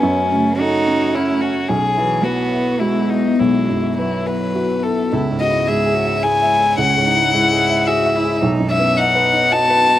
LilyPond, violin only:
\new Staff \with { instrumentName = "Violin" } { \time 3/4 \key cis \minor \tempo 4 = 109 cis'4 fis'4 e'8 fis'8 | gis'4 fis'4 e'8 dis'8 | e'4 e'8 b'4 a'8 | r8 dis''8 e''4 gis''4 |
fis''2 e''4 | r8 e''8 fis''4 a''4 | }